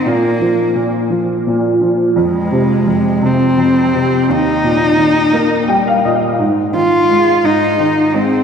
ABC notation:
X:1
M:6/8
L:1/16
Q:3/8=57
K:Fm
V:1 name="Cello"
B,4 z8 | A,6 C6 | E8- E2 z2 | z2 F4 E4 C2 |]
V:2 name="Upright piano"
z12 | z12 | z8 g f e2 | z12 |]
V:3 name="Upright piano" clef=bass
B,,2 F,2 B,,2 F,2 B,,2 F,2 | F,,2 C,2 F,,2 C,2 F,,2 C,2 | E,,2 B,,2 E,2 B,2 G,2 B,,2 | A,,2 E,2 A,2 A,,2 E,2 A,2 |]